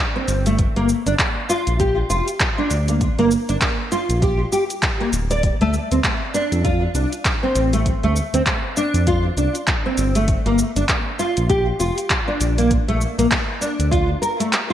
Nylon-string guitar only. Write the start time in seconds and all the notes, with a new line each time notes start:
0.16 C4
0.46 A3
0.76 A#3
1.07 D4
1.49 F4
1.80 G4
2.10 F4
2.58 D4
2.89 A#3
3.19 A#3
3.49 D4
3.92 F4
4.22 G4
4.52 G4
5.00 A#3
5.31 D5
5.61 A3
5.92 C4
6.34 D4
6.64 F4
6.95 D4
7.43 C4
7.73 A3
8.04 A3
8.34 C4
8.77 D4
9.07 F4
9.38 D4
9.86 C4
10.16 A3
10.46 A#3
10.76 D4
11.19 F4
11.49 G4
11.80 F4
12.28 D4
12.58 A#3
12.88 A3
13.18 A#3
13.61 D4
13.91 F4
14.22 A#4
14.40 A3